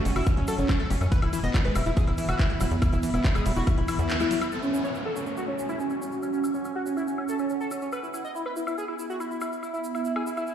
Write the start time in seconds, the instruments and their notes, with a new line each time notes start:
Already playing: ambient pad C#4 F#4 F#5 C#6
0.05 analog synth bass F#1, acid bass G3, analog synth lead C#4, open hi-hat, ride, shaker
0.16 analog synth bass F#1, analog synth lead E4, acid bass F#4, open hi-hat, high woodblock, shaker
0.26 acid bass G3, analog synth lead C#4, kick, closed hi-hat, ride, shaker
0.37 analog synth bass F#1, acid bass F#3, analog synth lead C#4, closed hi-hat
0.48 acid bass F#3, analog synth lead A4, open hi-hat, ride, high woodblock, shaker
0.58 analog synth bass F#1, analog synth lead C#4, closed hi-hat, shaker
0.69 acid bass E3, analog synth lead C#4, kick, clap, closed hi-hat, ride, high woodblock, shaker
0.80 acid bass A3, analog synth lead A4, closed hi-hat
0.90 analog synth bass F#1, acid bass G3, analog synth lead C#4, open hi-hat, ride, shaker
1.01 analog synth bass F#2, analog synth lead C#4, closed hi-hat, high woodblock, shaker
1.12 acid bass E3, ambient pad B3, analog synth lead B4, kick, closed hi-hat, ride, shaker
1.22 analog synth bass E1, acid bass E3, analog synth lead E4, ambient pad E4, closed hi-hat, high woodblock
1.28 ambient pad E5
1.33 acid bass E3, analog synth lead E4, open hi-hat, ride, shaker
1.38 ambient pad B5
1.43 analog synth bass E1, acid bass B3, analog synth lead D#5, closed hi-hat, shaker
1.54 acid bass D#3, analog synth lead E4, kick, clap, closed hi-hat, ride, high woodblock, shaker
1.65 analog synth bass E1, acid bass G#3, analog synth lead B4, closed hi-hat
1.75 analog synth bass E1, acid bass F#3, analog synth lead E4, open hi-hat, ride, high woodblock, shaker
1.86 analog synth bass E1, acid bass E4, analog synth lead E4, closed hi-hat, shaker
1.97 acid bass F#3, analog synth lead G#4, kick, closed hi-hat, ride, shaker
2.07 analog synth bass E1, acid bass E3, analog synth lead E4, closed hi-hat, high woodblock
2.18 acid bass E3, analog synth lead E4, open hi-hat, ride, shaker
2.29 analog synth bass E1, analog synth lead F#4, closed hi-hat, high woodblock, shaker
2.39 acid bass D#3, analog synth lead E4, kick, clap, closed hi-hat, ride, shaker
2.50 acid bass G#3, analog synth lead E4, closed hi-hat
2.60 analog synth bass E1, acid bass F#3, analog synth lead E4, open hi-hat, ride, high woodblock, shaker
2.71 analog synth bass E2, closed hi-hat, shaker
2.82 acid bass E3, analog synth lead E4, kick, closed hi-hat, ride, high woodblock, shaker
2.92 analog synth bass E1, acid bass E3, analog synth lead E4, closed hi-hat, shaker
3.03 acid bass E3, open hi-hat, ride, shaker
3.14 analog synth bass E1, acid bass B3, analog synth lead E4, closed hi-hat, high woodblock, shaker
3.24 acid bass D#3, analog synth lead E4, kick, clap, closed hi-hat, ride, shaker
3.35 analog synth bass E1, acid bass G#3, analog synth lead G#4, closed hi-hat, high woodblock, shaker
3.46 analog synth bass E1, acid bass F#3, analog synth lead E4, open hi-hat, ride, shaker
3.56 analog synth bass E1, acid bass E4, analog synth lead F#4, open hi-hat, shaker
3.67 acid bass F#3, analog synth lead E4, kick, closed hi-hat, ride, high woodblock, shaker
3.78 analog synth bass E1, acid bass E3, analog synth lead E4, closed hi-hat
3.88 acid bass E3, analog synth lead E4, open hi-hat, ride, high woodblock, shaker
3.99 analog synth bass E2, analog synth lead E4, closed hi-hat, shaker
4.09 acid bass D#3, analog synth lead E4, clap, closed hi-hat, ride, shaker
4.20 acid bass G#3, analog synth lead E4, closed hi-hat, high woodblock, shaker
4.31 acid bass F#3, analog synth lead E4, open hi-hat, ride, shaker
4.41 analog synth lead E4, closed hi-hat, high woodblock, shaker
4.52 ambient pad C#4, analog synth lead A4, downlifter, shaker
4.62 analog synth lead C#4, shaker
4.68 ambient pad F#4
4.73 analog synth lead C#4, high woodblock, shaker
4.83 analog synth lead C#5, ambient pad C#6, shaker
4.95 analog synth lead C#4, high woodblock, shaker
5.05 analog synth lead A4, ambient pad F#5
5.16 analog synth lead C#4, high woodblock, shaker
5.26 analog synth lead C#4, shaker
5.37 analog synth lead F#4, shaker
5.48 analog synth lead C#4, high woodblock
5.58 analog synth lead C#4, shaker
5.69 analog synth lead E4, high woodblock, shaker
5.80 analog synth lead C#4, shaker
5.90 analog synth lead C#4, high woodblock, shaker
6.01 analog synth lead C#4, shaker
6.12 shaker
6.22 analog synth lead C#4, high woodblock, shaker
6.33 analog synth lead C#4, shaker
6.44 high woodblock, shaker
6.54 analog synth lead C#4, shaker
6.65 analog synth lead C#4, high woodblock, shaker
6.76 analog synth lead F#4
6.86 analog synth lead C#4, shaker
6.97 analog synth lead E4, high woodblock, shaker
7.07 analog synth lead C#4, shaker
7.18 analog synth lead C#4, high woodblock
7.28 analog synth lead A4, shaker
7.39 analog synth lead C#4, high woodblock, shaker
7.49 analog synth lead C#4, shaker
7.61 analog synth lead A4, shaker
7.71 analog synth lead C#4, high woodblock, shaker
7.82 analog synth lead C#4, shaker
7.92 ambient pad B3, analog synth lead B4, high woodblock, shaker
8.03 analog synth lead E4, ambient pad E4, shaker
8.09 ambient pad E5
8.14 analog synth lead E4, high woodblock, shaker
8.24 analog synth lead D#5, shaker
8.35 analog synth lead E4, shaker
8.46 analog synth lead B4, high woodblock
8.56 analog synth lead E4, shaker
8.67 analog synth lead E4, high woodblock, shaker
8.74 analog synth lead G#4, ambient pad B5, shaker
8.88 analog synth lead E4, high woodblock
8.99 analog synth lead E4, shaker
9.10 analog synth lead F#4, shaker
9.20 analog synth lead E4, high woodblock, shaker
9.31 analog synth lead E4, shaker
9.41 analog synth lead E4, high woodblock, shaker
9.53 shaker
9.63 analog synth lead E4, high woodblock, shaker
9.73 analog synth lead E4, shaker
9.84 shaker
9.95 analog synth lead E4, high woodblock, shaker
10.05 analog synth lead E4, shaker
10.16 analog synth lead G#4, high woodblock
10.27 analog synth lead E4, shaker
10.37 analog synth lead E4, high woodblock, shaker
10.47 analog synth lead E4, shaker